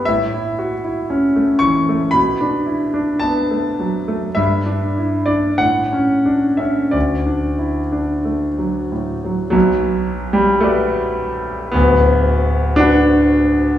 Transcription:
\new Staff \with { instrumentName = "Grand piano" } { \time 4/4 \key d \major \tempo 4 = 54 << { e''4. cis'''8 b''4 a''4 | e''8. d''16 fis''8. e''16 d''4. r8 | \key b \minor fis8. g16 a4 b4 d'4 | } \\ { a,16 e'16 fis'16 e'16 cis'16 a16 e16 a16 b,16 d'16 e'16 d'16 b16 a16 fis16 a16 | g,16 d'16 e'16 d'16 a,16 cis'16 d'16 cis'16 d,16 d'16 e'16 d'16 a16 fis16 a,16 fis16 | <b,, b,>4 <fis' b' d''>4 <d,, d,>4 <fis' b' fis''>4 | } >> }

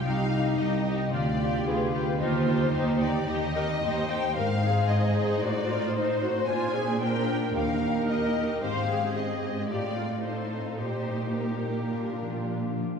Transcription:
<<
  \new Staff \with { instrumentName = "Violin section" } { \time 4/4 \key c \minor \tempo 4 = 111 f''4 ees''4 d''4 b'4 | c''4. d''8 ees''4. g''8 | \key ees \major f''4 ees''4 d''4 c''4 | aes''4 g''4 f''4 ees''4 |
f''4 ees''4 d''4 c''4 | c''4 bes'2~ bes'8 r8 | }
  \new Staff \with { instrumentName = "Viola section" } { \time 4/4 \key c \minor ees'2 f'8 g'8 aes'8 g'8 | f'4 ees'4 g'8 bes'8 c''4 | \key ees \major bes'8 aes'4. ges'8 f'8 ees'8 ges'8 | f'8 aes'8 bes'4 bes'2 |
c''8 aes'4. g'8 f'8 a'4 | g'2.~ g'8 r8 | }
  \new Staff \with { instrumentName = "Violin section" } { \time 4/4 \key c \minor << { g'8 g'8 g'8 g'8 g'8 g'8 g'8 g'8 | g'8 g'8 g'8 g'8 g'8 g'8 g'8 g'8 | \key ees \major c''1~ | c''2 g'2~ |
g'2 f'2 | g'2 f'4. r8 | } \\ { ees'8 ees'8 ees'8 ees'8 f'8 f'8 f'8 f'8 | ees'8 ees'8 ees'8 ees'8 ees'8 ees'8 ees'8 ees'8 | ees'1 | d'2 ees'2 |
c'2 ees'2~ | ees'2 d'4. r8 | } >> }
  \new Staff \with { instrumentName = "Harp" } { \time 4/4 \key c \minor <c g>8 c'8 ees'8 c'8 d8 b8 f'8 b8 | ees8 ees'8 g'8 ees'8 ees8 c'8 g'8 ees'8 | \key ees \major aes,8 c'8 ees'8 c'8 a,8 c'8 ees'8 c'8 | bes,8 c'8 d'8 c'8 ees8 ees'8 g'8 ees'8 |
aes,8 c'8 ees'8 c'8 a,8 c'8 ees'8 c'8 | bes,8 g8 ees'8 g8 bes,8 f8 d'8 f8 | }
  \new Staff \with { instrumentName = "Cello section" } { \clef bass \time 4/4 \key c \minor c,4 c,4 d,4 d,4 | ees,4 ees,4 ees,4 ees,4 | \key ees \major aes,2 a,2 | bes,2 ees,2 |
aes,2 a,2 | bes,2.~ bes,8 r8 | }
>>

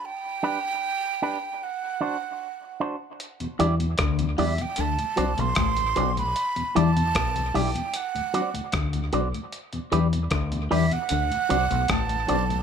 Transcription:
<<
  \new Staff \with { instrumentName = "Flute" } { \time 4/4 \key d \mixolydian \tempo 4 = 76 g''2 fis''4. r8 | r4. e''16 g''16 a''8. c'''4 b''16~ | b''8 a''4 g''8 fis''4 r4 | r4. e''16 fis''4~ fis''16 a''4 | }
  \new Staff \with { instrumentName = "Clean electric guitar" } { \time 4/4 \key d \mixolydian r8 <d' g' b'>8 r8 <d' g' b'>8 r8 <d' fis' c''>8 r8 <d' fis' c''>8 | r8 <e' g' d''>8 r8 <e' g' d''>8 r8 <fis' c'' d''>8 r8 <fis' c'' d''>8 | r8 <e' g' d''>8 r8 <e' g' d''>8 r8 <fis' c'' d''>8 r8 <fis' c'' d''>8 | r8 <g' b' d''>8 r8 <g' b' d''>8 r8 <fis' c'' d''>8 r8 <fis' c'' d''>8 | }
  \new Staff \with { instrumentName = "Clean electric guitar" } { \clef bass \time 4/4 \key d \mixolydian r1 | r8 e8 d8 e16 r16 d16 r16 c16 b,16 a,8 b,8 | r8 e8 b,8 b,16 r4 r16 d8 b,16 r16 | r8 e8 d8 e16 r16 d16 r16 c16 b,16 a,8 b,8 | }
  \new Staff \with { instrumentName = "Tonewheel organ" } { \time 4/4 \key d \mixolydian r1 | r8 <g d' e'>8 r8 <g d' e'>8 r8 <fis c' d'>8 r8 <fis c' d'>8 | r8 <g d' e'>8 r8 <g d' e'>8 r8 <fis c' d'>8 r8 <fis c' d'>8 | r8 <g d' e'>8 r8 <g d' e'>8 r8 <fis c' d'>8 r8 <fis c' d'>8 | }
  \new Staff \with { instrumentName = "Tonewheel organ" } { \clef bass \time 4/4 \key d \mixolydian r1 | r16 <e, b,>16 r16 <e, b,>16 r16 <e, b,>16 r16 <e, b,>16 r16 <d, a,>16 r16 <d, a,>16 r16 <d, a,>16 r16 <d, a,>16 | r16 <e, b,>16 r16 <e, b,>16 r16 <e, b,>16 r16 <e, b,>16 r16 <d, a,>16 r16 <d, a,>16 r16 <d, a,>16 r16 <d, a,>16 | r16 <e, b,>16 r16 <e, b,>16 r16 <e, b,>16 r16 <e, b,>16 r16 <d, a,>16 r16 <d, a,>16 r16 <d, a,>16 r16 <d, a,>16 | }
  \new Staff \with { instrumentName = "Fingered electric bass" } { \clef bass \time 4/4 \key d \mixolydian r1 | r8 e,8 d,8 e,16 r16 d,16 r16 c,16 b,,16 a,,8 b,,8 | r8 e,8 b,,8 b,,16 r4 r16 d,8 b,,16 r16 | r8 e,8 d,8 e,16 r16 d,16 r16 c,16 b,,16 a,,8 b,,8 | }
  \new DrumStaff \with { instrumentName = "Drums" } \drummode { \time 4/4 r4 r4 r4 r4 | hh16 hh16 hh16 hh16 <hh bd ss>16 hh16 hho16 hh16 hh16 hh16 hh16 hh16 <hh bd ss>16 hh16 hh16 hh16 | hh16 hh16 hh16 hh16 <hh bd ss>16 hh16 hho16 hh16 hh16 hh16 hh16 hh16 <hh bd ss>16 hh16 hh16 hh16 | hh16 hh16 hh16 hh16 <hh bd ss>16 hh16 hho16 hh16 hh16 hh16 hh16 hh16 <hh bd ss>16 hh16 hh16 hh16 | }
>>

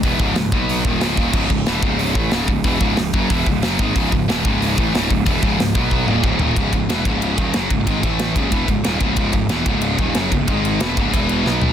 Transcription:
<<
  \new Staff \with { instrumentName = "Distorted electric guitar" } { \clef bass \time 4/4 \key cis \minor \tempo 4 = 184 <e, b, e>8 <cis, gis, cis>8 <cis, gis,>8 <b, fis b>4 <dis, ais, dis>8 <cis, gis, cis>8 <dis, ais, dis>8 | <cis, gis, cis>8 <cis, gis,>8 <e, b, e>8 <cis, gis, cis>4 <a, e a>8 <cis, gis, cis>8 <cis, gis,>8 | <e, b, e>8 <cis, gis, cis>8 <cis, gis,>8 <fis, cis fis>8 <e, b, e>8 <cis, gis,>8 <fis, cis fis>8 <gis, dis gis>8 | <cis, gis, cis>8 <cis, gis,>8 <e, b, e>8 <cis, gis, cis>4 <a, e a>8 <cis, gis, cis>8 <cis, gis,>8 |
<e, b, e>8 <cis, gis, cis>8 <cis, gis,>8 <b, fis b>4 <dis, ais, dis>8 <cis, gis, cis>8 <dis, ais, dis>8 | <cis, gis, cis>8 <cis, gis,>8 <e, b, e>8 <cis, gis, cis>4 <dis, ais, dis>8 <fis, cis fis>8 <cis, gis,>8 | <gis, dis gis>8 <a, e a>4 <cis, gis, cis>8 <e, b, e>8 <cis, gis,>8 <dis, ais, dis>8 <cis, gis, cis>8 | <cis, gis, cis>8 <cis, gis,>8 <e, b, e>8 <cis, gis, cis>4 <dis, ais, dis>8 <fis, cis fis>8 <cis, gis,>8 |
<gis, dis gis>4 <e, b, e>8 <cis, gis, cis>8 <e, b, e>4 <b, fis b>4 | }
  \new Staff \with { instrumentName = "Distorted electric guitar" } { \clef bass \time 4/4 \key cis \minor <e, b, e>8 <cis, gis, cis>8 <cis, gis,>8 <b, fis b>4 <dis, ais, dis>8 <cis, gis, cis>8 <dis, ais, dis>8 | <cis, gis, cis>8 <cis, gis,>8 <e, b, e>8 <cis, gis, cis>4 <a, e a>8 <cis, gis, cis>8 <cis, gis,>8 | <e, b, e>8 <cis, gis, cis>8 <cis, gis,>8 <fis, cis fis>8 <e, b, e>8 <cis, gis,>8 <fis, cis fis>8 <gis, dis gis>8 | <cis, gis, cis>8 <cis, gis,>8 <e, b, e>8 <cis, gis, cis>4 <a, e a>8 <cis, gis, cis>8 <cis, gis,>8 |
<e, b, e>8 <cis, gis, cis>8 <cis, gis,>8 <b, fis b>4 <dis, ais, dis>8 <cis, gis, cis>8 <dis, ais, dis>8 | <cis, gis, cis>8 <cis, gis,>8 <e, b, e>8 <cis, gis, cis>4 <dis, ais, dis>8 <fis, cis fis>8 <cis, gis,>8 | <gis, dis gis>8 <a, e a>4 <cis, gis, cis>8 <e, b, e>8 <cis, gis,>8 <dis, ais, dis>8 <cis, gis, cis>8 | <cis, gis, cis>8 <cis, gis,>8 <e, b, e>8 <cis, gis, cis>4 <dis, ais, dis>8 <fis, cis fis>8 <cis, gis,>8 |
<gis, dis gis>4 <e, b, e>8 <cis, gis, cis>8 <e, b, e>4 <b, fis b>4 | }
  \new Staff \with { instrumentName = "Picked electric bass" } { \clef bass \time 4/4 \key cis \minor e,,8 cis,,8 cis,,8 b,,4 dis,,8 cis,,8 dis,,8 | cis,,8 cis,,8 e,,8 cis,,4 a,,8 cis,,8 cis,,8 | e,,8 cis,,8 cis,,8 fis,,8 e,,8 cis,,8 fis,,8 gis,,8 | cis,,8 cis,,8 e,,8 cis,,4 a,,8 cis,,8 cis,,8 |
e,,8 cis,,8 cis,,8 b,,4 dis,,8 cis,,8 dis,,8 | cis,,8 cis,,8 e,,8 cis,,4 dis,,8 fis,,8 cis,,8 | gis,,8 a,,4 cis,,8 e,,8 cis,,8 dis,,8 cis,,8 | cis,,8 cis,,8 e,,8 cis,,4 dis,,8 fis,,8 cis,,8 |
gis,,4 e,,8 cis,,8 e,,4 b,,4 | }
  \new DrumStaff \with { instrumentName = "Drums" } \drummode { \time 4/4 <hho bd>8 bd8 <hho sn>8 bd8 hho8 bd8 <hho sn>8 bd8 | <cymc bd>8 bd8 <hho sn>8 bd8 hho8 bd8 <hho sn>8 bd8 | <hho bd>8 bd8 <hho sn>8 bd8 <hho bd>8 bd8 <hho sn>8 bd8 | <hho bd>8 bd8 <hho sn>8 bd8 hho8 bd8 <hho sn>8 bd8 |
<hho bd>8 bd8 <hho sn>8 bd8 bd8 toml8 bd8 tomfh8 | <bd cymr>8 <bd cymr>8 <cymr sn>8 <bd cymr>8 cymr8 <bd cymr>8 <cymr sn>8 <bd cymr>8 | <bd cymr>8 <bd cymr>8 <cymr sn>8 <bd cymr>8 <bd cymr>8 <bd cymr>8 <cymr sn>8 <bd cymr>8 | <bd cymr>8 <bd cymr>8 <cymr sn>8 <bd cymr>8 cymr8 <bd cymr>8 <cymr sn>8 <bd cymr>8 |
<bd cymr>8 cymr8 <cymr sn>8 <bd cymr>8 <bd cymr>8 cymr8 sn8 tomfh8 | }
>>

